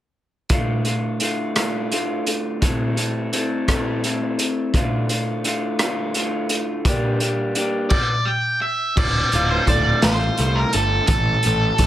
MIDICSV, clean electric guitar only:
0, 0, Header, 1, 2, 480
1, 0, Start_track
1, 0, Key_signature, -1, "minor"
1, 0, Tempo, 705053
1, 344, Time_signature, 6, 3, 24, 8
1, 8078, End_track
2, 0, Start_track
2, 0, Title_t, "Clean electric guitar"
2, 0, Program_c, 0, 27
2, 342, Note_on_c, 0, 38, 74
2, 347, Note_on_c, 0, 45, 71
2, 349, Note_on_c, 0, 50, 76
2, 354, Note_on_c, 0, 57, 77
2, 355, Note_on_c, 0, 65, 80
2, 581, Note_off_c, 0, 65, 0
2, 590, Note_on_c, 0, 65, 54
2, 594, Note_off_c, 0, 50, 0
2, 595, Note_off_c, 0, 57, 0
2, 598, Note_on_c, 0, 57, 50
2, 602, Note_on_c, 0, 50, 45
2, 819, Note_off_c, 0, 45, 0
2, 823, Note_off_c, 0, 38, 0
2, 825, Note_off_c, 0, 50, 0
2, 827, Note_on_c, 0, 45, 55
2, 830, Note_off_c, 0, 65, 0
2, 832, Note_off_c, 0, 57, 0
2, 833, Note_on_c, 0, 50, 61
2, 835, Note_on_c, 0, 57, 66
2, 838, Note_on_c, 0, 65, 57
2, 1056, Note_off_c, 0, 65, 0
2, 1063, Note_off_c, 0, 45, 0
2, 1064, Note_on_c, 0, 65, 79
2, 1065, Note_off_c, 0, 50, 0
2, 1066, Note_off_c, 0, 57, 0
2, 1068, Note_on_c, 0, 57, 68
2, 1071, Note_on_c, 0, 45, 63
2, 1073, Note_on_c, 0, 50, 66
2, 1077, Note_on_c, 0, 38, 58
2, 1299, Note_off_c, 0, 45, 0
2, 1303, Note_off_c, 0, 50, 0
2, 1307, Note_on_c, 0, 45, 61
2, 1308, Note_off_c, 0, 65, 0
2, 1311, Note_on_c, 0, 50, 62
2, 1312, Note_off_c, 0, 57, 0
2, 1314, Note_on_c, 0, 57, 62
2, 1316, Note_on_c, 0, 65, 71
2, 1551, Note_off_c, 0, 38, 0
2, 1768, Note_off_c, 0, 45, 0
2, 1774, Note_off_c, 0, 50, 0
2, 1776, Note_off_c, 0, 65, 0
2, 1776, Note_on_c, 0, 45, 80
2, 1782, Note_on_c, 0, 52, 75
2, 1786, Note_off_c, 0, 57, 0
2, 1786, Note_on_c, 0, 57, 73
2, 1789, Note_on_c, 0, 60, 79
2, 1789, Note_on_c, 0, 64, 78
2, 1790, Note_on_c, 0, 69, 87
2, 2013, Note_off_c, 0, 64, 0
2, 2013, Note_off_c, 0, 69, 0
2, 2016, Note_off_c, 0, 60, 0
2, 2016, Note_on_c, 0, 69, 65
2, 2021, Note_on_c, 0, 64, 62
2, 2024, Note_on_c, 0, 60, 55
2, 2026, Note_off_c, 0, 57, 0
2, 2029, Note_on_c, 0, 57, 46
2, 2260, Note_off_c, 0, 57, 0
2, 2260, Note_off_c, 0, 60, 0
2, 2261, Note_off_c, 0, 45, 0
2, 2262, Note_on_c, 0, 57, 59
2, 2264, Note_off_c, 0, 52, 0
2, 2265, Note_off_c, 0, 64, 0
2, 2268, Note_on_c, 0, 60, 61
2, 2273, Note_on_c, 0, 64, 60
2, 2277, Note_off_c, 0, 69, 0
2, 2280, Note_on_c, 0, 69, 66
2, 2500, Note_off_c, 0, 69, 0
2, 2506, Note_off_c, 0, 64, 0
2, 2508, Note_on_c, 0, 69, 75
2, 2510, Note_off_c, 0, 60, 0
2, 2511, Note_off_c, 0, 57, 0
2, 2514, Note_on_c, 0, 64, 70
2, 2518, Note_on_c, 0, 60, 69
2, 2519, Note_on_c, 0, 57, 66
2, 2521, Note_on_c, 0, 45, 65
2, 2524, Note_on_c, 0, 52, 72
2, 2742, Note_off_c, 0, 57, 0
2, 2746, Note_off_c, 0, 60, 0
2, 2750, Note_off_c, 0, 64, 0
2, 2750, Note_on_c, 0, 57, 63
2, 2751, Note_off_c, 0, 69, 0
2, 2754, Note_on_c, 0, 60, 60
2, 2758, Note_on_c, 0, 64, 60
2, 2760, Note_on_c, 0, 69, 64
2, 2994, Note_off_c, 0, 45, 0
2, 2995, Note_off_c, 0, 52, 0
2, 3214, Note_off_c, 0, 57, 0
2, 3216, Note_off_c, 0, 60, 0
2, 3218, Note_off_c, 0, 64, 0
2, 3219, Note_off_c, 0, 69, 0
2, 3227, Note_on_c, 0, 38, 84
2, 3231, Note_on_c, 0, 50, 85
2, 3233, Note_on_c, 0, 45, 78
2, 3235, Note_on_c, 0, 57, 78
2, 3240, Note_on_c, 0, 65, 82
2, 3459, Note_off_c, 0, 65, 0
2, 3462, Note_off_c, 0, 57, 0
2, 3467, Note_on_c, 0, 65, 61
2, 3470, Note_on_c, 0, 57, 55
2, 3472, Note_off_c, 0, 50, 0
2, 3480, Note_on_c, 0, 50, 49
2, 3697, Note_off_c, 0, 45, 0
2, 3702, Note_off_c, 0, 50, 0
2, 3706, Note_off_c, 0, 57, 0
2, 3706, Note_on_c, 0, 45, 62
2, 3707, Note_off_c, 0, 38, 0
2, 3710, Note_on_c, 0, 50, 67
2, 3713, Note_off_c, 0, 65, 0
2, 3714, Note_on_c, 0, 57, 67
2, 3721, Note_on_c, 0, 65, 64
2, 3941, Note_off_c, 0, 57, 0
2, 3941, Note_off_c, 0, 65, 0
2, 3948, Note_off_c, 0, 50, 0
2, 3949, Note_off_c, 0, 45, 0
2, 3949, Note_on_c, 0, 57, 73
2, 3949, Note_on_c, 0, 65, 79
2, 3956, Note_on_c, 0, 50, 73
2, 3957, Note_on_c, 0, 45, 61
2, 3961, Note_on_c, 0, 38, 61
2, 4178, Note_off_c, 0, 45, 0
2, 4181, Note_off_c, 0, 50, 0
2, 4185, Note_off_c, 0, 57, 0
2, 4186, Note_on_c, 0, 45, 67
2, 4189, Note_on_c, 0, 50, 67
2, 4192, Note_off_c, 0, 65, 0
2, 4193, Note_on_c, 0, 57, 68
2, 4200, Note_on_c, 0, 65, 75
2, 4434, Note_off_c, 0, 38, 0
2, 4652, Note_off_c, 0, 45, 0
2, 4654, Note_off_c, 0, 50, 0
2, 4656, Note_off_c, 0, 57, 0
2, 4659, Note_off_c, 0, 65, 0
2, 4670, Note_on_c, 0, 43, 78
2, 4672, Note_on_c, 0, 50, 78
2, 4674, Note_on_c, 0, 55, 78
2, 4679, Note_on_c, 0, 58, 89
2, 4680, Note_on_c, 0, 62, 88
2, 4682, Note_on_c, 0, 67, 88
2, 4900, Note_off_c, 0, 67, 0
2, 4905, Note_off_c, 0, 62, 0
2, 4909, Note_off_c, 0, 58, 0
2, 4909, Note_on_c, 0, 67, 64
2, 4911, Note_off_c, 0, 55, 0
2, 4913, Note_on_c, 0, 62, 57
2, 4917, Note_on_c, 0, 58, 57
2, 4919, Note_on_c, 0, 55, 51
2, 5137, Note_off_c, 0, 58, 0
2, 5138, Note_off_c, 0, 55, 0
2, 5143, Note_off_c, 0, 62, 0
2, 5146, Note_on_c, 0, 55, 59
2, 5146, Note_on_c, 0, 58, 62
2, 5149, Note_off_c, 0, 43, 0
2, 5149, Note_off_c, 0, 50, 0
2, 5150, Note_off_c, 0, 67, 0
2, 5151, Note_on_c, 0, 62, 67
2, 5158, Note_on_c, 0, 67, 72
2, 5372, Note_off_c, 0, 55, 0
2, 5372, Note_off_c, 0, 58, 0
2, 5375, Note_off_c, 0, 62, 0
2, 5378, Note_off_c, 0, 67, 0
2, 6112, Note_on_c, 0, 38, 70
2, 6362, Note_on_c, 0, 65, 67
2, 6593, Note_on_c, 0, 57, 59
2, 6824, Note_off_c, 0, 65, 0
2, 6832, Note_on_c, 0, 65, 70
2, 7070, Note_off_c, 0, 57, 0
2, 7072, Note_on_c, 0, 57, 56
2, 7309, Note_off_c, 0, 38, 0
2, 7313, Note_on_c, 0, 50, 56
2, 7549, Note_off_c, 0, 65, 0
2, 7550, Note_off_c, 0, 50, 0
2, 7554, Note_on_c, 0, 45, 67
2, 7788, Note_on_c, 0, 69, 66
2, 8078, Note_off_c, 0, 45, 0
2, 8078, Note_off_c, 0, 57, 0
2, 8078, Note_off_c, 0, 69, 0
2, 8078, End_track
0, 0, End_of_file